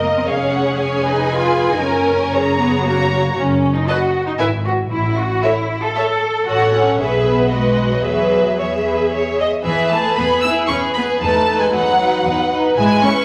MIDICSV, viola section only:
0, 0, Header, 1, 2, 480
1, 0, Start_track
1, 0, Key_signature, 6, "major"
1, 0, Tempo, 515464
1, 248, Time_signature, 3, 2, 24, 8
1, 3126, Key_signature, 4, "major"
1, 4568, Tempo, 527241
1, 8888, Tempo, 519031
1, 12216, End_track
2, 0, Start_track
2, 0, Title_t, "Viola section"
2, 0, Program_c, 0, 48
2, 0, Note_on_c, 0, 70, 40
2, 250, Note_off_c, 0, 70, 0
2, 269, Note_on_c, 0, 68, 40
2, 1198, Note_off_c, 0, 68, 0
2, 1219, Note_on_c, 0, 68, 42
2, 1684, Note_off_c, 0, 68, 0
2, 1693, Note_on_c, 0, 70, 47
2, 1930, Note_off_c, 0, 70, 0
2, 1941, Note_on_c, 0, 70, 46
2, 2016, Note_off_c, 0, 70, 0
2, 2183, Note_on_c, 0, 68, 46
2, 2644, Note_off_c, 0, 68, 0
2, 2663, Note_on_c, 0, 66, 45
2, 3134, Note_off_c, 0, 66, 0
2, 3620, Note_on_c, 0, 71, 46
2, 3695, Note_off_c, 0, 71, 0
2, 4089, Note_on_c, 0, 71, 46
2, 4164, Note_off_c, 0, 71, 0
2, 5048, Note_on_c, 0, 69, 48
2, 5121, Note_off_c, 0, 69, 0
2, 5522, Note_on_c, 0, 69, 46
2, 5595, Note_off_c, 0, 69, 0
2, 5996, Note_on_c, 0, 69, 55
2, 6436, Note_off_c, 0, 69, 0
2, 6477, Note_on_c, 0, 68, 48
2, 6942, Note_off_c, 0, 68, 0
2, 6954, Note_on_c, 0, 66, 42
2, 7425, Note_off_c, 0, 66, 0
2, 7430, Note_on_c, 0, 68, 43
2, 7896, Note_off_c, 0, 68, 0
2, 7907, Note_on_c, 0, 68, 42
2, 8681, Note_off_c, 0, 68, 0
2, 8884, Note_on_c, 0, 52, 50
2, 9109, Note_off_c, 0, 52, 0
2, 9126, Note_on_c, 0, 57, 48
2, 9366, Note_off_c, 0, 57, 0
2, 9371, Note_on_c, 0, 59, 46
2, 9609, Note_off_c, 0, 59, 0
2, 9611, Note_on_c, 0, 64, 54
2, 9851, Note_off_c, 0, 64, 0
2, 9858, Note_on_c, 0, 61, 56
2, 9932, Note_off_c, 0, 61, 0
2, 10107, Note_on_c, 0, 59, 45
2, 10181, Note_off_c, 0, 59, 0
2, 10340, Note_on_c, 0, 57, 55
2, 10688, Note_off_c, 0, 57, 0
2, 10694, Note_on_c, 0, 56, 50
2, 10813, Note_off_c, 0, 56, 0
2, 10820, Note_on_c, 0, 54, 49
2, 11534, Note_off_c, 0, 54, 0
2, 11785, Note_on_c, 0, 56, 59
2, 12000, Note_off_c, 0, 56, 0
2, 12010, Note_on_c, 0, 61, 53
2, 12216, Note_off_c, 0, 61, 0
2, 12216, End_track
0, 0, End_of_file